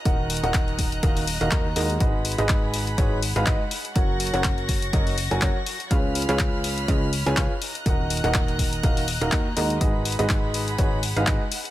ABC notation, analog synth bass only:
X:1
M:4/4
L:1/16
Q:"Swing 16ths" 1/4=123
K:D#m
V:1 name="Analog synth bass" clef=bass
D,,,3 D,,,4- D,,, D,,,3 D,,, D,,2 D,,2 | G,,,3 G,,,4- G,,, G,,,3 G,,, z4 | F,,,3 F,,,4- F,,, F,,,3 F,,, F,,, z3 | C,,3 C,,4- C,, C,,3 C,, z4 |
D,,,3 D,,,4- D,,, D,,,3 D,,, D,,2 D,,2 | G,,,3 G,,,4- G,,, G,,,3 G,,, z4 |]